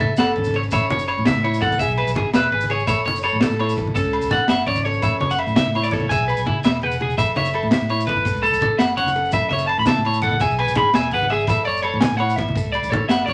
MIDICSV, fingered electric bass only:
0, 0, Header, 1, 2, 480
1, 0, Start_track
1, 0, Key_signature, 3, "major"
1, 0, Tempo, 358852
1, 963, Time_signature, 12, 3, 24, 8
1, 17836, End_track
2, 0, Start_track
2, 0, Title_t, "Fingered electric bass"
2, 0, Program_c, 0, 33
2, 5, Note_on_c, 0, 33, 105
2, 108, Note_off_c, 0, 33, 0
2, 243, Note_on_c, 0, 30, 93
2, 451, Note_off_c, 0, 30, 0
2, 484, Note_on_c, 0, 32, 89
2, 899, Note_off_c, 0, 32, 0
2, 968, Note_on_c, 0, 33, 101
2, 1070, Note_off_c, 0, 33, 0
2, 1197, Note_on_c, 0, 30, 95
2, 1511, Note_off_c, 0, 30, 0
2, 1572, Note_on_c, 0, 45, 84
2, 1672, Note_off_c, 0, 45, 0
2, 1809, Note_on_c, 0, 45, 107
2, 2118, Note_off_c, 0, 45, 0
2, 2164, Note_on_c, 0, 33, 93
2, 2371, Note_off_c, 0, 33, 0
2, 2408, Note_on_c, 0, 28, 105
2, 2509, Note_off_c, 0, 28, 0
2, 2518, Note_on_c, 0, 35, 104
2, 2728, Note_off_c, 0, 35, 0
2, 2758, Note_on_c, 0, 35, 88
2, 2864, Note_off_c, 0, 35, 0
2, 2891, Note_on_c, 0, 32, 104
2, 2991, Note_off_c, 0, 32, 0
2, 3134, Note_on_c, 0, 28, 90
2, 3337, Note_off_c, 0, 28, 0
2, 3363, Note_on_c, 0, 32, 94
2, 3778, Note_off_c, 0, 32, 0
2, 3842, Note_on_c, 0, 33, 99
2, 3945, Note_off_c, 0, 33, 0
2, 4084, Note_on_c, 0, 30, 101
2, 4394, Note_off_c, 0, 30, 0
2, 4448, Note_on_c, 0, 45, 86
2, 4549, Note_off_c, 0, 45, 0
2, 4683, Note_on_c, 0, 45, 106
2, 4994, Note_off_c, 0, 45, 0
2, 5040, Note_on_c, 0, 32, 102
2, 5249, Note_off_c, 0, 32, 0
2, 5276, Note_on_c, 0, 30, 109
2, 5382, Note_off_c, 0, 30, 0
2, 5397, Note_on_c, 0, 37, 100
2, 5606, Note_off_c, 0, 37, 0
2, 5654, Note_on_c, 0, 37, 84
2, 5752, Note_off_c, 0, 37, 0
2, 5761, Note_on_c, 0, 33, 106
2, 5865, Note_off_c, 0, 33, 0
2, 6026, Note_on_c, 0, 30, 97
2, 6223, Note_off_c, 0, 30, 0
2, 6247, Note_on_c, 0, 32, 86
2, 6661, Note_off_c, 0, 32, 0
2, 6723, Note_on_c, 0, 33, 101
2, 6826, Note_off_c, 0, 33, 0
2, 6958, Note_on_c, 0, 30, 92
2, 7271, Note_off_c, 0, 30, 0
2, 7306, Note_on_c, 0, 45, 86
2, 7417, Note_off_c, 0, 45, 0
2, 7568, Note_on_c, 0, 45, 101
2, 7877, Note_off_c, 0, 45, 0
2, 7924, Note_on_c, 0, 33, 98
2, 8131, Note_off_c, 0, 33, 0
2, 8162, Note_on_c, 0, 28, 107
2, 8266, Note_off_c, 0, 28, 0
2, 8284, Note_on_c, 0, 35, 100
2, 8491, Note_off_c, 0, 35, 0
2, 8527, Note_on_c, 0, 35, 85
2, 8628, Note_off_c, 0, 35, 0
2, 8645, Note_on_c, 0, 32, 102
2, 8747, Note_off_c, 0, 32, 0
2, 8888, Note_on_c, 0, 28, 87
2, 9093, Note_off_c, 0, 28, 0
2, 9132, Note_on_c, 0, 28, 91
2, 9543, Note_off_c, 0, 28, 0
2, 9605, Note_on_c, 0, 33, 94
2, 9707, Note_off_c, 0, 33, 0
2, 9860, Note_on_c, 0, 30, 94
2, 10164, Note_off_c, 0, 30, 0
2, 10214, Note_on_c, 0, 45, 87
2, 10313, Note_off_c, 0, 45, 0
2, 10448, Note_on_c, 0, 45, 102
2, 10757, Note_off_c, 0, 45, 0
2, 10806, Note_on_c, 0, 31, 97
2, 11012, Note_off_c, 0, 31, 0
2, 11038, Note_on_c, 0, 30, 106
2, 11144, Note_off_c, 0, 30, 0
2, 11167, Note_on_c, 0, 37, 96
2, 11373, Note_off_c, 0, 37, 0
2, 11405, Note_on_c, 0, 37, 83
2, 11507, Note_off_c, 0, 37, 0
2, 11517, Note_on_c, 0, 33, 98
2, 11623, Note_off_c, 0, 33, 0
2, 11769, Note_on_c, 0, 30, 94
2, 11974, Note_off_c, 0, 30, 0
2, 12022, Note_on_c, 0, 30, 91
2, 12430, Note_off_c, 0, 30, 0
2, 12480, Note_on_c, 0, 33, 103
2, 12585, Note_off_c, 0, 33, 0
2, 12731, Note_on_c, 0, 30, 93
2, 13039, Note_off_c, 0, 30, 0
2, 13087, Note_on_c, 0, 45, 85
2, 13189, Note_off_c, 0, 45, 0
2, 13344, Note_on_c, 0, 45, 104
2, 13646, Note_off_c, 0, 45, 0
2, 13684, Note_on_c, 0, 33, 93
2, 13891, Note_off_c, 0, 33, 0
2, 13920, Note_on_c, 0, 28, 109
2, 14025, Note_off_c, 0, 28, 0
2, 14059, Note_on_c, 0, 35, 102
2, 14259, Note_off_c, 0, 35, 0
2, 14304, Note_on_c, 0, 35, 84
2, 14380, Note_off_c, 0, 35, 0
2, 14388, Note_on_c, 0, 32, 105
2, 14498, Note_off_c, 0, 32, 0
2, 14655, Note_on_c, 0, 28, 96
2, 14857, Note_off_c, 0, 28, 0
2, 14899, Note_on_c, 0, 32, 88
2, 15307, Note_off_c, 0, 32, 0
2, 15350, Note_on_c, 0, 33, 100
2, 15459, Note_off_c, 0, 33, 0
2, 15610, Note_on_c, 0, 30, 90
2, 15918, Note_off_c, 0, 30, 0
2, 15972, Note_on_c, 0, 45, 86
2, 16071, Note_off_c, 0, 45, 0
2, 16205, Note_on_c, 0, 45, 109
2, 16515, Note_off_c, 0, 45, 0
2, 16552, Note_on_c, 0, 33, 94
2, 16763, Note_off_c, 0, 33, 0
2, 16792, Note_on_c, 0, 30, 110
2, 16899, Note_off_c, 0, 30, 0
2, 16925, Note_on_c, 0, 37, 104
2, 17131, Note_off_c, 0, 37, 0
2, 17153, Note_on_c, 0, 37, 90
2, 17260, Note_off_c, 0, 37, 0
2, 17275, Note_on_c, 0, 33, 109
2, 17381, Note_off_c, 0, 33, 0
2, 17511, Note_on_c, 0, 30, 95
2, 17722, Note_off_c, 0, 30, 0
2, 17755, Note_on_c, 0, 32, 92
2, 17836, Note_off_c, 0, 32, 0
2, 17836, End_track
0, 0, End_of_file